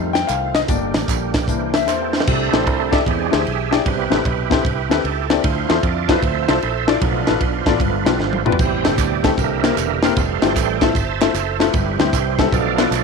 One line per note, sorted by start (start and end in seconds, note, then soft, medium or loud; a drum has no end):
0.00 0.23 F2 medium
0.00 0.68 D#3 medium
0.00 0.18 G3 medium
0.00 0.19 A3 soft
0.00 0.68 A3 medium
0.00 0.68 C4 medium
0.00 0.19 D#4 medium
0.00 0.67 F4 medium
0.13 0.28 G5 loud
0.13 snare loud
0.13 closed hi-hat medium
0.13 tambourine medium
0.27 0.63 C2 medium
0.27 0.52 F5 loud
0.27 clap medium
0.27 closed hi-hat medium
0.27 tambourine loud
0.55 0.60 D#5 loud
0.55 snare loud
0.55 closed hi-hat medium
0.55 tambourine medium
0.68 0.91 G1 medium
0.68 1.47 D3 medium
0.68 1.31 G3 medium
0.68 1.48 G3 medium
0.68 1.31 A#3 medium
0.68 2.26 A#3 medium
0.68 1.32 D4 medium
0.68 2.26 G4 medium
0.68 1.06 D5 medium
0.68 kick loud
0.68 closed hi-hat loud
0.68 tambourine medium
0.94 1.07 A1 loud
0.94 snare loud
0.94 closed hi-hat medium
0.94 tambourine medium
1.08 1.48 A#1 medium
1.08 kick medium
1.08 clap loud
1.08 closed hi-hat medium
1.08 tambourine loud
1.34 kick medium
1.34 snare loud
1.34 closed hi-hat medium
1.34 tambourine medium
1.48 1.88 C2 medium
1.48 2.23 E3 medium
1.48 2.27 E3 medium
1.48 2.24 A#3 medium
1.48 2.27 C4 medium
1.48 2.24 D4 medium
1.48 kick medium
1.48 closed hi-hat medium
1.48 tambourine medium
1.74 1.88 E5 loud
1.74 snare loud
1.74 closed hi-hat medium
1.74 tambourine medium
1.87 2.22 E2 medium
1.87 2.15 A4 medium
1.87 2.25 C5 medium
1.87 snare medium
1.87 clap loud
1.87 tambourine medium
2.13 2.22 C5 medium
2.13 snare medium
2.13 tambourine medium
2.20 snare loud
2.27 2.50 C2 medium
2.27 2.89 C3 medium
2.27 3.03 A3 medium
2.27 3.03 D4 medium
2.27 3.04 E4 medium
2.27 3.04 A4 medium
2.27 2.96 C5 loud
2.27 kick loud
2.27 crash loud
2.52 2.67 A1 loud
2.52 2.61 D4 medium
2.52 2.61 E4 medium
2.52 2.61 G4 medium
2.52 2.62 A4 medium
2.52 2.62 C5 medium
2.52 snare loud
2.52 ride soft
2.67 3.01 C2 loud
2.67 kick medium
2.67 ride medium
2.91 3.00 D4 medium
2.91 3.00 E4 medium
2.91 3.01 G4 medium
2.91 3.01 A4 medium
2.91 3.01 D5 medium
2.91 3.07 E5 medium
2.91 kick loud
2.91 snare loud
2.91 ride medium
3.06 3.29 E2 loud
3.06 3.68 E3 medium
3.06 3.36 G#3 medium
3.06 3.37 C4 medium
3.06 3.37 D4 medium
3.06 3.34 G4 medium
3.06 3.34 G#4 medium
3.06 3.20 E5 medium
3.06 kick loud
3.06 ride medium
3.31 3.45 D2 loud
3.31 3.40 D4 medium
3.31 3.40 E4 medium
3.31 3.40 G4 medium
3.31 3.83 G4 medium
3.31 3.41 G#4 medium
3.31 3.41 C5 medium
3.31 snare loud
3.31 ride medium
3.35 3.83 G#4 medium
3.35 3.75 E5 loud
3.47 3.80 B1 medium
3.47 ride medium
3.71 3.80 D4 medium
3.71 3.80 E4 medium
3.71 3.80 G4 medium
3.71 3.80 G#4 medium
3.71 3.81 D5 medium
3.71 3.80 D5 medium
3.71 snare loud
3.71 ride medium
3.85 4.08 C2 loud
3.85 4.47 C3 medium
3.85 4.15 G3 medium
3.85 4.16 B3 medium
3.85 4.16 C4 medium
3.85 4.51 E4 medium
3.85 4.51 G4 medium
3.85 4.51 B4 medium
3.85 kick loud
3.85 ride medium
4.10 4.23 A1 medium
4.10 4.19 C4 medium
4.10 4.19 E4 medium
4.10 4.20 G4 medium
4.10 4.20 A4 medium
4.10 4.20 B4 medium
4.10 snare loud
4.10 ride soft
4.25 4.59 B1 loud
4.25 kick medium
4.25 ride medium
4.50 4.59 C4 medium
4.50 4.59 E4 medium
4.50 5.27 E4 medium
4.50 4.59 G4 medium
4.50 5.27 G4 medium
4.50 4.59 A4 medium
4.50 4.89 B4 medium
4.50 4.60 C5 medium
4.50 kick loud
4.50 snare loud
4.50 ride medium
4.65 4.91 C2 medium
4.65 kick loud
4.65 ride medium
4.90 5.02 D2 loud
4.90 4.98 C4 medium
4.90 4.99 E4 medium
4.90 4.99 G4 medium
4.90 4.99 A4 medium
4.90 4.97 B4 medium
4.90 5.00 B4 medium
4.90 snare loud
4.90 ride medium
5.04 5.38 C#2 medium
5.04 5.31 A4 medium
5.04 ride medium
5.30 5.38 C4 medium
5.30 5.38 E4 medium
5.30 5.39 G4 medium
5.30 5.39 A4 medium
5.30 5.34 B4 medium
5.30 5.39 D5 medium
5.30 snare loud
5.30 ride medium
5.39 5.44 B4 medium
5.44 5.66 D2 loud
5.44 6.05 D3 medium
5.44 6.07 E4 medium
5.44 6.19 F4 medium
5.44 5.85 C5 medium
5.44 kick loud
5.44 ride loud
5.69 5.82 E2 loud
5.69 5.77 D4 medium
5.69 5.78 E4 medium
5.69 5.78 F4 medium
5.69 5.78 A4 medium
5.69 5.79 C5 medium
5.69 snare loud
5.69 ride medium
5.83 6.17 F2 loud
5.83 6.10 D5 medium
5.83 kick medium
5.83 ride medium
6.07 6.58 F3 medium
6.07 6.59 C4 medium
6.07 6.17 D4 medium
6.07 6.59 E4 medium
6.07 6.17 E4 medium
6.07 6.18 F4 medium
6.07 6.47 A4 medium
6.07 6.18 A4 medium
6.07 6.18 B4 medium
6.07 6.47 C5 medium
6.07 6.47 E5 loud
6.07 kick medium
6.07 snare loud
6.07 ride medium
6.22 6.45 D2 loud
6.22 kick loud
6.22 ride medium
6.48 6.60 C2 loud
6.48 6.57 D4 medium
6.48 6.57 E4 medium
6.48 6.57 F4 medium
6.48 6.98 A4 medium
6.48 6.57 A4 medium
6.48 6.98 C5 medium
6.48 6.58 C5 medium
6.48 6.89 E5 loud
6.48 snare loud
6.48 ride medium
6.62 6.96 A#1 medium
6.62 ride medium
6.87 6.96 D4 medium
6.87 6.96 E4 medium
6.87 6.96 F4 medium
6.87 6.97 A4 medium
6.87 7.02 D5 loud
6.87 6.97 D5 loud
6.87 snare loud
6.87 ride medium
7.01 7.24 B1 loud
7.01 7.63 B2 medium
7.01 7.31 F3 medium
7.01 7.32 A3 medium
7.01 7.66 D4 medium
7.01 7.66 F4 medium
7.01 7.54 B4 loud
7.01 kick loud
7.01 ride loud
7.27 7.40 A1 medium
7.27 7.36 B3 medium
7.27 7.36 D4 medium
7.27 7.36 F4 medium
7.27 7.36 A4 medium
7.27 7.36 B4 medium
7.27 snare loud
7.27 ride soft
7.41 7.63 B1 medium
7.41 kick medium
7.41 ride medium
7.58 7.67 C5 medium
7.66 7.78 A1 medium
7.66 7.75 B3 medium
7.66 7.75 D4 medium
7.66 8.42 D4 medium
7.66 8.42 F4 medium
7.66 7.76 F4 medium
7.66 7.75 A4 medium
7.66 8.21 B4 loud
7.66 7.76 D5 medium
7.66 kick medium
7.66 snare loud
7.66 ride medium
7.80 8.02 G1 loud
7.80 8.42 G2 medium
7.80 8.43 F3 medium
7.80 8.43 A3 medium
7.80 8.43 B3 medium
7.80 kick loud
7.80 ride medium
8.05 8.17 B1 medium
8.05 8.14 B3 medium
8.05 8.14 D4 medium
8.05 8.15 F4 medium
8.05 8.15 G4 medium
8.05 8.15 B4 medium
8.05 snare loud
8.05 ride medium
8.19 8.53 G#1 medium
8.19 8.44 C5 loud
8.19 snare medium
8.33 high tom medium
8.45 8.54 B3 medium
8.45 8.54 D4 medium
8.45 8.54 F4 medium
8.45 8.54 G4 medium
8.45 8.55 B4 medium
8.45 8.59 D5 loud
8.45 mid tom medium
8.52 floor tom loud
8.59 8.86 A1 medium
8.59 9.20 A2 medium
8.59 9.34 B2 medium
8.59 9.34 C3 medium
8.59 9.34 G3 medium
8.59 9.34 E4 medium
8.59 9.34 G4 medium
8.59 8.96 C5 loud
8.59 kick loud
8.59 crash medium
8.59 tambourine medium
8.84 8.96 G1 medium
8.84 8.93 A3 medium
8.84 8.93 C4 medium
8.84 8.93 E4 medium
8.84 8.93 G4 medium
8.84 8.94 A4 medium
8.84 snare loud
8.84 ride soft
8.84 tambourine medium
8.97 9.32 D2 loud
8.97 9.22 D5 loud
8.97 kick medium
8.97 clap loud
8.97 ride medium
8.97 tambourine loud
9.23 9.32 A3 medium
9.23 9.32 C4 medium
9.23 9.33 E4 medium
9.23 9.33 G4 medium
9.23 9.33 A4 medium
9.23 9.30 E5 loud
9.23 kick medium
9.23 snare loud
9.23 ride medium
9.23 tambourine medium
9.37 9.71 C2 medium
9.37 9.99 C3 medium
9.37 9.99 D3 medium
9.37 10.00 E3 medium
9.37 10.00 A#3 medium
9.37 10.13 G4 medium
9.37 10.13 A#4 medium
9.37 9.99 E5 loud
9.37 kick loud
9.37 ride medium
9.37 tambourine medium
9.63 9.72 A#3 medium
9.63 9.72 C4 medium
9.63 9.72 E4 medium
9.63 9.72 G4 medium
9.63 9.73 A#4 medium
9.63 snare loud
9.63 clap medium
9.63 ride medium
9.63 tambourine medium
9.77 10.11 E1 medium
9.77 clap loud
9.77 ride medium
9.77 tambourine loud
10.02 10.11 A#3 medium
10.02 10.11 C4 medium
10.02 10.12 E4 medium
10.02 10.12 G4 medium
10.02 10.78 A4 medium
10.02 10.12 A#4 medium
10.02 10.78 C5 medium
10.02 10.44 F5 loud
10.02 snare loud
10.02 ride medium
10.02 tambourine medium
10.16 10.39 F1 loud
10.16 10.81 E3 medium
10.16 10.81 G3 medium
10.16 10.82 A3 medium
10.16 kick loud
10.16 ride medium
10.16 tambourine medium
10.42 10.54 G1 medium
10.42 10.50 A3 medium
10.42 10.51 C4 medium
10.42 10.51 E4 medium
10.42 10.51 F4 medium
10.42 10.51 G4 medium
10.42 10.56 G5 loud
10.42 snare loud
10.42 ride medium
10.42 tambourine medium
10.56 10.89 A1 loud
10.56 10.83 G5 loud
10.56 kick medium
10.56 clap loud
10.56 ride medium
10.56 tambourine loud
10.81 10.94 E3 medium
10.81 10.94 G3 soft
10.81 10.90 A3 medium
10.81 10.95 A3 medium
10.81 10.90 C4 medium
10.81 10.90 E4 medium
10.81 10.90 F4 medium
10.81 10.91 A4 medium
10.81 11.57 C5 medium
10.81 11.57 E5 medium
10.81 11.31 A5 loud
10.81 kick medium
10.81 snare loud
10.81 ride medium
10.81 tambourine medium
10.95 11.29 G1 loud
10.95 kick loud
10.95 ride medium
10.95 tambourine medium
11.20 11.29 A3 medium
11.20 11.29 C4 medium
11.20 11.29 E4 medium
11.20 11.30 F4 medium
11.20 11.30 A4 medium
11.20 snare loud
11.20 clap medium
11.20 ride medium
11.20 tambourine medium
11.34 11.68 F#1 loud
11.34 11.61 A4 loud
11.34 clap loud
11.34 ride medium
11.34 tambourine loud
11.59 11.68 A3 medium
11.59 11.68 C4 medium
11.59 11.69 E4 medium
11.59 12.36 E4 medium
11.59 11.69 F4 medium
11.59 12.36 G4 medium
11.59 11.69 A4 loud
11.59 12.10 B4 loud
11.59 snare loud
11.59 ride medium
11.59 tambourine medium
11.73 11.96 G1 loud
11.73 12.35 G2 medium
11.73 12.48 E3 medium
11.73 12.49 G3 medium
11.73 12.49 C4 medium
11.73 kick loud
11.73 ride medium
11.73 tambourine medium
11.99 12.11 D2 loud
11.99 12.08 G3 medium
11.99 12.08 C4 medium
11.99 12.08 E4 medium
11.99 12.08 G4 medium
11.99 12.09 C5 medium
11.99 snare loud
11.99 ride soft
11.99 tambourine medium
12.13 12.47 C2 loud
12.13 12.40 C5 medium
12.13 kick loud
12.13 clap loud
12.13 ride medium
12.13 tambourine loud
12.38 12.47 G3 medium
12.38 12.47 C4 medium
12.38 12.47 E4 medium
12.38 12.47 G4 medium
12.38 12.48 A4 medium
12.38 12.53 E5 medium
12.38 kick medium
12.38 snare loud
12.38 ride medium
12.38 tambourine medium
12.52 12.86 B1 loud
12.52 13.04 B2 medium
12.52 13.04 F3 medium
12.52 13.04 A3 medium
12.52 13.04 D4 medium
12.52 12.86 A4 medium
12.52 12.84 D5 medium
12.52 12.87 F5 loud
12.52 kick loud
12.52 ride medium
12.52 tambourine medium
12.77 12.86 B3 medium
12.77 12.86 D4 medium
12.77 12.86 F4 medium
12.77 12.87 A4 medium
12.77 12.87 B4 medium
12.77 snare loud
12.77 clap medium
12.77 ride medium
12.77 tambourine medium
12.86 13.04 F4 medium
12.86 13.04 A4 medium
12.86 13.04 D5 loud
12.91 13.04 B1 loud
12.91 clap loud
12.91 ride medium
12.91 tambourine loud